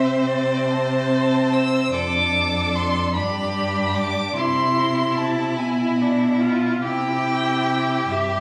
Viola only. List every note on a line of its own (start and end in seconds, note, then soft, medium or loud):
0.00 0.69 C4 soft
0.72 1.92 C4 soft
1.95 3.14 D4 soft
3.16 4.38 D4 soft
4.37 5.59 E4 soft
5.59 6.03 E4 soft
6.02 6.41 D4 soft
6.42 6.86 F4 soft
6.85 8.13 E4 soft
8.11 8.40 G4 soft